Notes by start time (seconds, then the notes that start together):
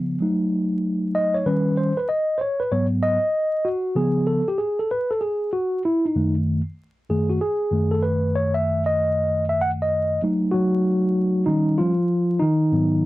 Already playing: C#3 F3 B3
0.21 F#3 A3 D#4
1.15 D#5
1.34 C#5
1.46 D#3 G3 C#4 B4
1.77 C5
1.97 B4
2.09 D#5
2.38 C5 C#5
2.60 B4
2.71 G#2 F#3 B3 C#5
3.03 D#5
3.65 F#4
3.95 C#3 F3 B3 G#4
4.27 A4
4.48 G4
4.58 G#4
4.79 A4
4.91 B4
5.11 A4
5.21 G#4
5.53 F#4
5.85 E4
6.06 D#4
6.15 F#2 D#3 A3
7.09 F#2 D#3 A3 G#4
7.30 F#4
7.41 G#4
7.71 F#2 D#3 A3
7.91 A4
8.03 B4
8.35 C#5
8.54 E5
8.86 D#5
9.49 E5
9.61 F#5
9.82 D#5
10.22 F#3 A3 D#4
10.51 F#3 F#4
11.46 D#3 G3 C#4 D#4
11.78 F3 F4
12.39 D#3 D#4
12.72 G#2 F#3 B3